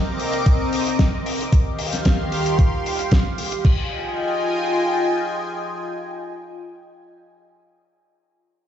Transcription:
Already playing: C4 A#4 D#5 D6
0.20 open hi-hat
0.33 closed hi-hat
0.46 kick, closed hi-hat
0.73 open hi-hat
0.87 closed hi-hat
0.99 kick, snare, closed hi-hat
1.26 open hi-hat
1.41 closed hi-hat
1.52 D#3 G4 F5 C6, kick, closed hi-hat
1.79 open hi-hat
1.93 snare, closed hi-hat
2.05 kick, snare, closed hi-hat
2.32 open hi-hat
2.46 closed hi-hat
2.59 kick, closed hi-hat
2.86 open hi-hat
2.99 closed hi-hat
3.11 kick, snare, closed hi-hat
3.38 open hi-hat
3.52 closed hi-hat
3.65 F4 D#5 G5 G#5, kick, crash

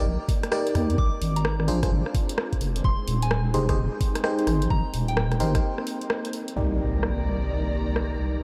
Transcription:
Already playing: A#3 D#4 D5 G5
0.05 A#1
0.28 kick, open hi-hat
0.43 cross-stick, closed hi-hat
0.52 D#4 G4 A#4 D5, cross-stick
0.67 closed hi-hat
0.75 D#2, cross-stick, open hi-hat
0.90 closed hi-hat
0.98 A#1 G#3 C4 F4 D6, kick
1.21 G#1, open hi-hat
1.36 A#5, closed hi-hat
1.45 cross-stick
1.60 cross-stick
1.68 A#1 D4 F4 G#4 C5, open hi-hat
1.83 D4 F4 G#4 C5, kick, cross-stick, closed hi-hat
1.91 G#1
2.06 cross-stick
2.15 kick, open hi-hat
2.29 closed hi-hat
2.38 cross-stick
2.53 kick, closed hi-hat
2.61 F1 C4 D#4 G5, open hi-hat
2.76 closed hi-hat
2.84 F1 C6, kick
3.08 D#1, open hi-hat
3.22 G#5, closed hi-hat
3.31 cross-stick
3.54 F1 D#4 G4 G#4 C5, open hi-hat
3.69 D#4 G4 G#4 C5, kick, cross-stick, closed hi-hat
3.77 D#1
4.01 kick, open hi-hat
4.15 cross-stick, closed hi-hat
4.24 D#4 G4 G#4 C5, cross-stick
4.39 closed hi-hat
4.47 G#1, cross-stick, open hi-hat
4.62 closed hi-hat
4.70 G#1 A#3 C4 D#4 A#5, kick
4.94 D#1, open hi-hat
5.08 G5, closed hi-hat
5.17 cross-stick
5.32 cross-stick, closed hi-hat
5.40 G#1 D#4 G4 A#4 C5, open hi-hat
5.55 D#4 G4 A#4 C5, kick, cross-stick, closed hi-hat
5.78 cross-stick
5.87 open hi-hat
6.01 closed hi-hat
6.10 cross-stick
6.25 closed hi-hat
6.33 open hi-hat
6.48 closed hi-hat
6.56 C2 D#3 A#3 D#4 G4 A#4 D5, impact
6.80 A#5
6.85 D5
7.03 cross-stick
7.96 cross-stick

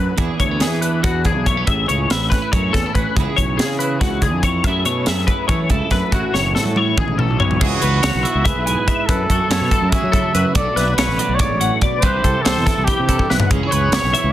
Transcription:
Already playing: F#2 A3 E4 G#4 B4
0.17 E2 E3 B3 D4 G#4, kick, closed hi-hat
0.40 D2 A3 C#5, kick, closed hi-hat
0.51 B3
0.60 E3 G#4, snare, closed hi-hat
0.82 D4 B4, closed hi-hat
1.03 E2 B3 F#4, kick, closed hi-hat
1.25 D4 G#4, kick, closed hi-hat
1.36 B1
1.46 A3 C#5, kick, closed hi-hat
1.57 B3
1.67 A1 A2 G#4 E5, kick, closed hi-hat
1.88 C#2 C#4 C#5, closed hi-hat
2.10 A1 B4 E5, snare, closed hi-hat
2.30 C#4 B4, kick, snare, closed hi-hat
2.42 E4
2.52 F#2 C#4 C#5, kick, closed hi-hat
2.73 E2 C#4 A4, kick, snare, closed hi-hat
2.86 E4
2.95 A1 C#4 B4, kick, closed hi-hat
3.16 C#2 C#3 E3 G#4, kick, closed hi-hat
3.20 B3 E4 G#4
3.36 B1 B3 C#5, kick, closed hi-hat
3.57 C#3 G#4, snare, closed hi-hat
3.79 E4 B4, closed hi-hat
4.01 C#2 C#3 F#4, kick, snare, closed hi-hat
4.22 D3 G#4, kick, closed hi-hat
4.33 F2
4.43 E3 C#5, kick, closed hi-hat
4.64 F#2 F#3 E5, kick, closed hi-hat
4.68 A3 E4 G#4
4.85 B2 A3 C#5, closed hi-hat
5.06 F#2 G#4 E5, snare, closed hi-hat
5.27 E4 B4, kick, closed hi-hat
5.48 E3 A3 C#5, kick, closed hi-hat
5.70 C#2 E4 A4, kick, closed hi-hat
5.91 F#2 A3 B4, kick, snare, closed hi-hat
6.11 A1 A2 E3 C#4 E4 F#4, kick, closed hi-hat
6.34 F#1 C#4 C#5, snare
6.55 A2 F#4 A4, snare
6.65 high tom
6.76 E4 C#5, high tom
6.97 A1 G#2 G#4, kick, mid tom
7.08 mid tom
7.18 A2 A4, mid tom
7.30 B1
7.40 B2 C#5, floor tom
7.51 floor tom
7.61 C#2 C#3 E3 B3 E4 F#4 G#4, kick, crash
7.82 C#2 C#4 B4, closed hi-hat
7.94 E4
8.03 C#2 B3 C#5, snare, closed hi-hat
8.15 B1
8.23 E3 E4 E5, closed hi-hat
8.35 C#2
8.45 G#4 B4 E5, kick, closed hi-hat
8.56 B1
8.66 G#2 E4 G#5, closed hi-hat
8.88 G#4 E5, kick, closed hi-hat
9.06 F#2 E4 A4 B4, kick, closed hi-hat
9.30 F#2 F#4 A4, kick, closed hi-hat
9.50 F#2 A3 C#5, snare, closed hi-hat
9.61 B2
9.71 F#3 E4 A4, kick, closed hi-hat
9.82 F#2
9.90 G#4 E5, kick, closed hi-hat
9.95 F#4
10.03 F#3
10.12 C#3 E4 A4, kick, closed hi-hat
10.35 F#2 F#4 B4, closed hi-hat
10.55 B1 B2 D4 A4 D5, kick, closed hi-hat
10.76 B1 E4 B4, snare, closed hi-hat
10.88 F#4
10.95 B1 A3 B4 C#5, snare, closed hi-hat
11.07 A1
11.19 F#3 D4 D5, closed hi-hat
11.29 B1
11.35 C#5, closed hi-hat
11.40 G#2 D5, kick
11.50 A1
11.61 A2 F#5, closed hi-hat
11.81 B2 D5, kick, closed hi-hat
11.99 C3 C5, closed hi-hat
12.03 C2 E3 C4 E4 G4 B4, kick
12.24 C2 G4 A4, kick, closed hi-hat
12.42 C2 C4 A4 C5, snare, closed hi-hat
12.57 E2
12.66 E3 E4 A4, kick, snare, closed hi-hat
12.78 C2
12.85 E4 G4, kick, closed hi-hat
12.99 C3
13.09 G2 E4 A4, kick, closed hi-hat
13.19 kick
13.30 B1 E4 B4, snare
13.40 floor tom
13.46 G#4 F#5
13.51 C#2 C#3 C#4, kick, closed hi-hat
13.63 E4
13.69 C#2 B4 C#5, closed hi-hat
13.74 G#4
13.92 C#2 C#5, snare, closed hi-hat
13.96 B3
14.03 B1
14.14 E3 E4 E5, closed hi-hat
14.24 C#2

